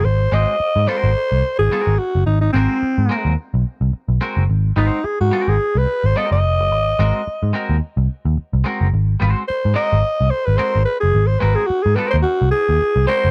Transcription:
X:1
M:4/4
L:1/16
Q:"Swing 16ths" 1/4=108
K:Abmix
V:1 name="Alto saxophone"
c2 e4 c4- c A3 G2 | E E C6 z8 | z2 E2 A G2 A2 _c2 =c e e3- | e6- e z8 z |
z4 c2 e4 c _c =c2 _c A- | A c _c A G A c =c G2 A4 c2 |]
V:2 name="Clean electric guitar"
z2 [A,CGc]2 z2 [A,CGB]2 z4 [A,CGB]2 z2 | z2 [A,CGB]2 z2 [A,CGB]2 z6 [A,CGB]2 | z2 [A,CGc]2 z2 [A,CGB]2 z4 [A,CGB]2 z2 | z2 [A,CGB]2 z2 [A,CGB]2 z6 [A,CGB]2 |
z2 [A,CGc]2 z2 [A,CGB]2 z4 [A,CGB]2 z2 | z2 [A,CGB]2 z2 [A,CGB]2 z6 [A,CGB]2 |]
V:3 name="Picked electric bass" clef=bass
A,,,2 A,,, z2 A,, z A,,, z C,, z A,,, z A,,, z G,,, | A,,,2 A,,, z2 A,, z E,, z _C,, z =C,, z _C,, z G,,, | A,,,2 A,,, z2 A,, z A,,, z C,, z A,,, z G,,, F,,, G,,, | A,,,2 A,,, z2 A,, z E,, z C,, z E,, z C,, z G,,, |
A,,,2 A,,, z2 A,, z A,,, z C,, z A,,, z A,,, z G,,, | A,,,2 A,,, z2 A,, z E,, z C,, z E,, z C,, z G,,, |]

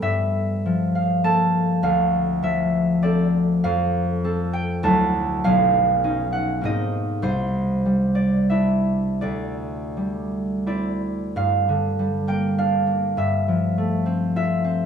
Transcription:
X:1
M:3/4
L:1/8
Q:1/4=100
K:Gdor
V:1 name="Harp"
[eg]3 f a2 | f2 e2 d2 | f3 g a2 | f3 ^f ^d2 |
c3 d e2 | d4 d2 | f3 g f2 | e4 e2 |]
V:2 name="Harp"
[G,,G,A]2 F,2 [B,A]2 | D,,2 F,2 [CA]2 | F,,2 [CA]2 [D,,^F,DE]2 | =B,,,2 [^C^D]2 [^G,,^A,^B,D]2 |
C,,2 G,2 [DE]2 | D,,2 G,2 [CE]2 | G,, D, G, B, D B, | G,, F, A, C F C |]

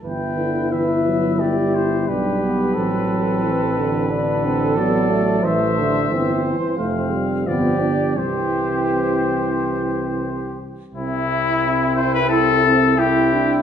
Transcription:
X:1
M:4/4
L:1/16
Q:1/4=88
K:Dmix
V:1 name="Trumpet"
g4 e4 d2 c2 B4- | B12 d4 | [K:C] e6 z2 f4 d4 | c12- c2 z2 |
E6 c B A4 G4 |]
V:2 name="Flugelhorn"
B4 B4 G4 G4 | A8 A8 | [K:C] c4 c6 z2 G4 | G12- G2 z2 |
E12 E4 |]
V:3 name="French horn"
E12 D2 B,2 | C8 D2 C2 B,2 A,2- | [K:C] A,4 C2 z2 C4 B,2 D2 | C12- C2 z2 |
C12 C4 |]
V:4 name="Euphonium" clef=bass
E,2 D,2 E,2 F,2 G,8 | F,4 E,2 D,6 F,4 | [K:C] E,2 D,2 E,2 E,2 A,2 G,2 F,2 z2 | E,12- E,2 z2 |
z8 E2 C2 E2 D2 |]
V:5 name="Tuba" clef=bass
G,,,12 B,,,4 | A,,,16 | [K:C] A,,,4 G,,,2 z2 F,,,4 G,,,4 | C,,12- C,,2 z2 |
C,,16 |]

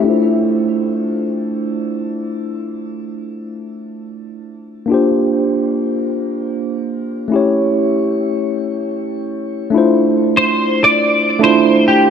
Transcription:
X:1
M:4/4
L:1/16
Q:"Swing 16ths" 1/4=99
K:Dm
V:1 name="Clean electric guitar"
z16 | z16 | z16 | z16 |
z4 c3 d4 c3 G2 |]
V:2 name="Tine electric piano"
[A,DEFc]16- | [A,DEFc]16 | [B,DFGc]16 | [A,^CEG^c]16 |
[A,DEFc]8- [A,DEFc]3 [A,DEFc]4- [A,DEFc] |]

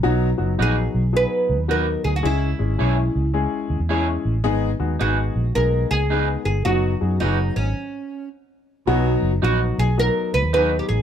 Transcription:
X:1
M:4/4
L:1/16
Q:"Swing" 1/4=109
K:B
V:1 name="Oud"
z4 G4 B4 A2 G F | E8 z8 | z4 F4 A2 G4 G2 | F4 D2 C6 z4 |
z4 F2 G2 A2 B2 B3/2 =G/2 ^G2 |]
V:2 name="Clean electric guitar"
z4 [DFB] z6 z [DFB] z3 | z4 [EGc] z6 z [EGc] z3 | z4 [DGB] z6 z [DGB] z3 | z4 [DFB] z8 z3 |
z4 [DFB] z6 z [DFB] z3 |]
V:3 name="Grand piano"
[F,B,DF]2 [F,B,DF]2 [F,B,DF]2 z2 [F,B,DG]2 z2 [F,B,DF]2 z2 | [G,CEG]2 [G,CEG]2 [G,CEG]2 z2 [G,CEG]2 z2 [G,CEG]2 z2 | [G,B,DG]2 [G,B,DF]2 [G,B,DG]2 z2 [G,B,DG]2 z2 [G,B,DG]2 z2 | [F,B,DF]2 [F,B,DG]2 [F,B,DG]2 z8 z2 |
[F,B,DF]2 z2 [F,B,DF]2 z2 [F,B,DF]2 z2 [F,B,DG]2 z2 |]
V:4 name="Baritone saxophone" clef=bass
z16 | z16 | z16 | z16 |
B,,2 z12 z2 |]
V:5 name="Fingered electric bass" clef=bass
B,,,2 F,,,2 A,,,2 B,,,3 z C,, D,,3 =D,,2 | C,,2 G,,,2 B,,,2 C,,3 z D,, E,,3 =A,,,2 | G,,,2 D,,2 G,,,2 A,,,2 B,,,2 C,,4 =G,,,2 | F,,,2 F,,2 F,,,2 G,,,2 z8 |
B,,,2 F,,,2 A,,,2 B,,,3 z C,, D,,3 =A,,,2 |]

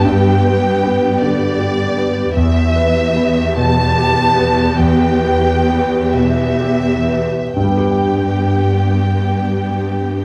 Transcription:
X:1
M:6/8
L:1/16
Q:3/8=47
K:G
V:1 name="Violin section"
g6 d6 | e6 a6 | g6 e6 | g12 |]
V:2 name="Viola section"
[B,G]12 | [B,G]12- | [B,G]8- [B,G]3 z | [B,G]12 |]
V:3 name="Grand piano"
[G,,B,]2 B2 B,2 D,2 G2 B,2 | E,,2 B2 B,2 B,,2 G2 B,2 | E,,2 B2 B,2 B,,2 G2 B,2 | [G,,G,B,GBg]12 |]
V:4 name="Cello section" clef=bass
G,,12 | E,,12- | E,,8- E,,3 z | G,,12 |]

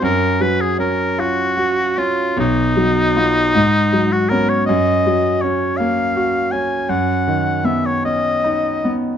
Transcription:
X:1
M:6/8
L:1/16
Q:3/8=52
K:F#
V:1 name="Oboe"
A2 B G A2 F4 E2 | D8- D F A c | d4 c2 e4 g2 | f4 =e c d4- d z |]
V:2 name="Grand piano"
F,,2 F,2 C2 E2 F2 C2 | B,,,2 F,2 [B,E]2 G,,2 F,2 [B,C]2 | F,,2 F,2 C2 A,2 F2 C2 | F,,2 D,2 B,2 C2 D2 B,2 |]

